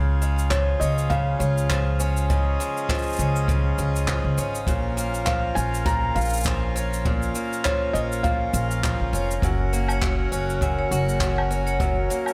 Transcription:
Already playing: C#2 C#3 C#4 F4 G#4 F5
0.22 G#3, shaker
0.39 shaker
0.50 F3 C#5, kick, clap, shaker
0.80 C#2 C#4 D#5, shaker
0.98 shaker
1.10 C#3 F5, kick, shaker
1.39 C#2 F4 C#5, shaker
1.58 shaker
1.70 F3, kick, clap, shaker
2.00 C#4, shaker
2.17 shaker
2.30 C#3 D#5, kick, shaker
2.60 G#3, shaker
2.77 shaker
2.89 F3, kick, clap, shaker
2.94 shaker
2.98 shaker
3.02 shaker
3.06 shaker
3.09 shaker
3.13 shaker
3.16 C#2 C#4, shaker
3.19 shaker
3.36 shaker
3.48 C#3, kick, shaker
3.78 C#2 F4, shaker
3.96 shaker
4.08 F3, kick, clap, shaker
4.24 C#2
4.38 G#1 C#4, shaker
4.55 shaker
4.67 A#1 A#2 A#4 F5, kick, shaker
4.97 A#3, shaker
5.14 shaker
5.25 F3 F5, kick, clap, shaker
5.55 A#1 C#4 G#5, shaker
5.74 shaker
5.86 A#2 A#5, kick, shaker
6.15 A#1 F4 F5, shaker
6.21 shaker
6.25 shaker
6.29 shaker
6.33 shaker
6.37 shaker
6.40 shaker
6.43 F3, kick, clap, shaker
6.76 C#4, shaker
6.93 shaker
7.05 A#2, kick
7.22 shaker
7.35 A#3, shaker
7.53 shaker
7.65 F3 C#5, kick, clap, shaker
7.93 A#1 C#4 D#5, shaker
8.12 shaker
8.23 A#2 F5, kick, shaker
8.54 A#1 F4, shaker
8.71 shaker
8.84 F3, kick, clap, shaker
9.00 A#1
9.13 F1 C#4, shaker
9.31 shaker
9.42 F#1 F#2 C#4 F#4 F#5, kick, shaker
9.73 A#3, shaker
9.89 C#5, low woodblock, shaker
10.02 F#3, kick, clap, shaker
10.32 F#1 C#4, shaker
10.50 shaker
10.61 F#2 G#5, kick, shaker
10.79 C#5
10.91 F#1 F#4 F#5, shaker
11.09 shaker
11.20 F#3, kick, clap, shaker
11.38 low woodblock
11.51 C#4, shaker
11.67 C#5, shaker
11.80 F#2, kick, shaker
12.10 A#3, shaker
12.26 low woodblock, shaker

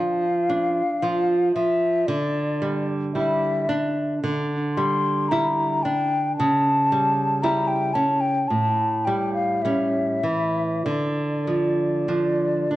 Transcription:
Already playing: F3 D4 F5
0.50 D4
1.02 F3 F4
1.54 F3 E5
2.06 D3 D5
2.62 G3
3.13 G3 E4 E5
3.69 D4
4.24 D3
4.75 G3 C6
5.29 G3 E4 A#5
5.83 D4 G5
6.37 C#3 A5
6.92 G3
7.42 G3 E4 A#5
7.68 G5
7.94 C#4 A5
8.20 G5
8.48 A2 A5
9.05 G3 G5
9.34 F5
9.62 G3 C#4 E5
10.24 E3
10.85 D3 D5
11.48 F3
12.08 F3 D4
12.71 D4

